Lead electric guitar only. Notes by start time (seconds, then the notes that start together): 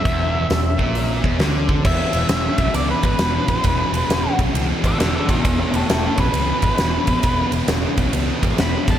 Already playing: E5
1.86 E5
2.75 D5
2.90 B4
3.05 B4
4.86 D5 F#5
4.99 D5 F#5
5.16 D5 F#5
5.30 G#4 E5
5.45 G#4 E5
5.60 G#4 E5
5.75 E4 C#5
5.90 E4 C#5
6.05 E4 C#5
6.20 B4
8.61 B5
8.91 A5